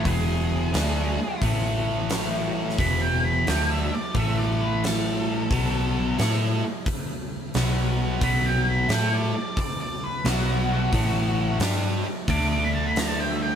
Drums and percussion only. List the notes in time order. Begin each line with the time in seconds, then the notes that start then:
0.05 kick, open hi-hat
0.74 snare, open hi-hat
1.42 kick, open hi-hat
2.10 snare, open hi-hat
2.69 snare
2.78 kick, open hi-hat
3.47 snare, open hi-hat
4.15 kick, open hi-hat
4.84 snare, open hi-hat
5.51 kick, open hi-hat
6.19 snare, open hi-hat
6.86 kick, open hi-hat
7.54 snare, open hi-hat
8.21 kick, open hi-hat
8.89 snare, open hi-hat
9.57 kick, open hi-hat
10.25 snare, open hi-hat
10.93 kick, open hi-hat
11.60 snare, open hi-hat
12.28 kick, open hi-hat
12.96 snare, open hi-hat